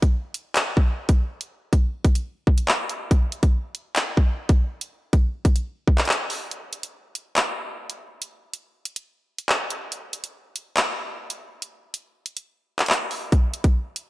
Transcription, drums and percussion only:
0.02 kick, closed hi-hat
0.34 closed hi-hat
0.56 clap, closed hi-hat
0.77 kick
1.09 kick, closed hi-hat
1.41 closed hi-hat
1.73 kick, closed hi-hat
2.05 kick, closed hi-hat
2.15 closed hi-hat
2.47 kick
2.58 closed hi-hat
2.68 clap
2.89 closed hi-hat
3.11 kick, closed hi-hat
3.32 closed hi-hat
3.43 kick, closed hi-hat
3.75 closed hi-hat
3.96 clap, closed hi-hat
4.17 kick
4.49 kick, closed hi-hat
4.81 closed hi-hat
5.13 kick, closed hi-hat
5.45 kick, closed hi-hat
5.56 closed hi-hat
5.88 kick
5.98 clap, closed hi-hat
6.05 clap, closed hi-hat
6.12 closed hi-hat
6.30 open hi-hat
6.51 closed hi-hat
6.73 closed hi-hat
6.83 closed hi-hat
7.15 closed hi-hat
7.36 clap, closed hi-hat
7.90 closed hi-hat
8.22 closed hi-hat
8.54 closed hi-hat
8.85 closed hi-hat
8.96 closed hi-hat
9.38 closed hi-hat
9.49 clap
9.70 closed hi-hat
9.92 closed hi-hat
10.13 closed hi-hat
10.24 closed hi-hat
10.56 closed hi-hat
10.77 clap, closed hi-hat
11.30 closed hi-hat
11.62 closed hi-hat
11.94 closed hi-hat
12.26 closed hi-hat
12.37 closed hi-hat
12.79 clap, closed hi-hat
12.86 clap, closed hi-hat
12.93 closed hi-hat
13.11 open hi-hat
13.32 kick, closed hi-hat
13.54 closed hi-hat
13.64 kick, closed hi-hat
13.96 closed hi-hat

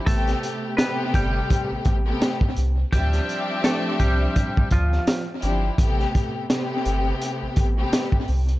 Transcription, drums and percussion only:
0.07 kick, closed hi-hat
0.27 snare, closed hi-hat
0.43 closed hi-hat
0.78 snare, closed hi-hat
1.14 kick, closed hi-hat
1.50 kick, closed hi-hat
1.85 kick, closed hi-hat
2.22 snare, closed hi-hat
2.41 kick
2.56 closed hi-hat
2.93 kick, closed hi-hat
3.13 snare, closed hi-hat
3.29 closed hi-hat
3.64 snare, closed hi-hat
4.00 kick, closed hi-hat
4.36 kick, closed hi-hat
4.57 kick
4.71 kick, closed hi-hat
4.92 snare
5.07 snare, closed hi-hat
5.42 closed hi-hat
5.78 kick, closed hi-hat
6.00 snare
6.15 kick, closed hi-hat
6.50 snare, closed hi-hat
6.85 closed hi-hat
7.22 closed hi-hat
7.56 kick, closed hi-hat
7.93 snare, closed hi-hat
8.12 kick
8.28 open hi-hat
8.49 closed hi-hat

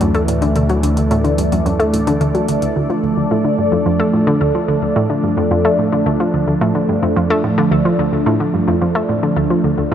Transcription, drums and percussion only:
0.01 closed hi-hat
0.15 closed hi-hat
0.28 closed hi-hat
0.42 closed hi-hat
0.56 closed hi-hat, high tom
0.69 closed hi-hat
0.83 closed hi-hat
0.97 closed hi-hat
1.11 closed hi-hat
1.25 closed hi-hat
1.38 closed hi-hat
1.52 closed hi-hat
1.66 closed hi-hat
1.80 closed hi-hat
1.94 closed hi-hat
2.07 closed hi-hat
2.21 closed hi-hat
2.35 closed hi-hat
2.48 closed hi-hat
2.62 closed hi-hat

